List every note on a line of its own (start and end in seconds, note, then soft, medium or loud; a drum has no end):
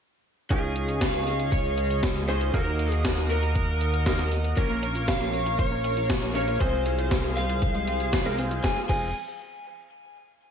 0.50 2.51 C#2 medium
0.50 2.25 C#4 medium
0.50 2.25 D#4 medium
0.50 2.25 F4 medium
0.50 1.03 G#4 medium
0.50 2.52 G#4 medium
0.50 1.03 G#4 medium
0.50 2.25 G#4 medium
0.50 4.53 D#5 medium
0.50 2.52 F5 medium
0.50 2.52 C#6 loud
0.50 kick loud
0.50 closed hi-hat medium
0.76 closed hi-hat medium
0.89 closed hi-hat medium
1.01 1.48 F5 loud
1.01 1.49 F5 loud
1.01 kick loud
1.01 snare loud
1.01 closed hi-hat medium
1.14 closed hi-hat soft
1.27 open hi-hat medium
1.40 closed hi-hat medium
1.52 1.99 C#5 medium
1.52 kick loud
1.52 closed hi-hat medium
1.78 closed hi-hat medium
1.90 closed hi-hat medium
2.03 kick loud
2.03 snare loud
2.03 closed hi-hat medium
2.16 closed hi-hat soft
2.28 2.51 C#4 medium
2.28 2.51 D#4 medium
2.28 2.51 F4 medium
2.28 2.51 G#4 medium
2.28 2.55 C5 loud
2.28 2.54 C5 loud
2.28 open hi-hat medium
2.41 closed hi-hat medium
2.54 4.55 D#2 medium
2.54 4.03 A#3 medium
2.54 4.03 D#4 medium
2.54 4.03 F#4 medium
2.54 4.55 A#4 medium
2.54 3.01 A#4 loud
2.54 4.03 A#4 loud
2.54 3.01 A#4 medium
2.54 4.55 F#5 medium
2.54 4.55 D#6 loud
2.54 kick loud
2.54 closed hi-hat medium
2.79 closed hi-hat medium
2.92 closed hi-hat medium
3.05 kick loud
3.05 snare loud
3.05 closed hi-hat medium
3.17 closed hi-hat soft
3.30 4.28 A#4 loud
3.30 open hi-hat medium
3.43 closed hi-hat medium
3.55 kick loud
3.55 closed hi-hat medium
3.81 closed hi-hat medium
3.94 closed hi-hat medium
4.06 4.21 A#3 loud
4.06 4.21 D#4 medium
4.06 4.21 F#4 medium
4.06 4.21 A#4 loud
4.06 kick loud
4.06 snare loud
4.06 closed hi-hat medium
4.19 snare soft
4.19 closed hi-hat soft
4.32 open hi-hat medium
4.44 closed hi-hat medium
4.57 6.58 A#1 medium
4.57 4.69 F3 medium
4.57 6.32 A#3 medium
4.57 6.32 C#4 medium
4.57 6.32 F4 medium
4.57 5.04 A#4 medium
4.57 6.32 A#4 medium
4.57 6.59 A#4 loud
4.57 6.59 C#5 medium
4.57 8.60 F5 medium
4.57 6.59 C#6 loud
4.57 kick loud
4.57 closed hi-hat medium
4.70 4.80 A#3 loud
4.83 4.88 C#4 medium
4.83 closed hi-hat medium
4.95 5.07 F4 medium
4.95 closed hi-hat medium
5.08 5.20 F3 medium
5.08 5.55 F5 loud
5.08 5.56 F5 loud
5.08 kick loud
5.08 snare loud
5.08 closed hi-hat medium
5.21 5.30 A#3 loud
5.21 closed hi-hat soft
5.33 5.39 C#4 medium
5.33 open hi-hat medium
5.46 5.58 F4 medium
5.46 closed hi-hat medium
5.59 5.71 F3 medium
5.59 6.06 C#5 medium
5.59 kick loud
5.59 closed hi-hat medium
5.72 5.81 A#3 loud
5.84 5.90 C#4 medium
5.84 closed hi-hat medium
5.97 6.09 F4 medium
5.97 closed hi-hat medium
6.10 6.22 F3 medium
6.10 kick loud
6.10 snare loud
6.10 closed hi-hat medium
6.22 6.32 A#3 loud
6.22 closed hi-hat soft
6.35 6.58 A#3 medium
6.35 6.41 C#4 medium
6.35 6.58 C#4 medium
6.35 6.58 F4 medium
6.35 6.58 A#4 medium
6.35 6.61 C#5 loud
6.35 6.60 C#5 loud
6.35 open hi-hat medium
6.48 6.60 F4 medium
6.48 closed hi-hat medium
6.60 8.61 C2 medium
6.60 6.73 F3 medium
6.60 8.10 G#3 medium
6.60 8.10 C4 medium
6.60 8.10 F4 medium
6.60 8.62 G#4 medium
6.60 8.10 G#4 loud
6.60 8.62 C5 medium
6.60 7.08 C5 loud
6.60 8.62 C6 medium
6.60 kick loud
6.60 closed hi-hat medium
6.73 6.83 G#3 loud
6.86 6.92 C4 medium
6.86 closed hi-hat medium
6.98 7.11 F4 medium
6.98 closed hi-hat medium
7.11 7.23 F3 medium
7.11 kick loud
7.11 snare loud
7.11 closed hi-hat medium
7.24 7.34 G#3 loud
7.24 closed hi-hat soft
7.37 7.43 C4 medium
7.37 8.34 F5 loud
7.37 8.35 F5 loud
7.37 open hi-hat medium
7.49 7.62 F4 medium
7.49 closed hi-hat medium
7.62 7.74 F3 medium
7.62 kick loud
7.62 closed hi-hat medium
7.75 7.85 G#3 loud
7.75 closed hi-hat soft
7.88 7.94 C4 medium
7.88 closed hi-hat medium
8.00 8.12 F4 medium
8.00 closed hi-hat medium
8.13 8.25 F3 medium
8.13 kick loud
8.13 snare loud
8.13 closed hi-hat medium
8.26 8.36 G#3 medium
8.26 8.36 G#3 loud
8.26 8.36 C4 medium
8.26 8.36 F4 medium
8.26 8.36 A#4 loud
8.26 snare soft
8.26 closed hi-hat soft
8.38 8.61 G#3 medium
8.38 8.44 C4 medium
8.38 8.61 C4 medium
8.38 8.61 F4 medium
8.38 8.61 G#4 medium
8.38 open hi-hat medium
8.51 8.63 F4 medium
8.51 closed hi-hat medium
8.64 8.78 F1 loud
8.64 8.78 F3 loud
8.64 8.78 G#3 medium
8.64 8.87 C4 medium
8.64 8.78 C4 medium
8.64 8.88 F4 medium
8.64 8.78 F4 medium
8.64 8.87 G#4 medium
8.64 8.78 G#4 loud
8.64 8.87 F5 medium
8.64 8.78 G#5 medium
8.64 kick loud
8.64 snare medium
8.89 9.13 F1 medium
8.89 9.13 F3 medium
8.89 9.08 G#3 medium
8.89 9.09 C4 medium
8.89 9.09 F4 medium
8.89 9.08 G#4 loud
8.89 9.13 G#5 medium
8.89 kick loud
8.89 crash medium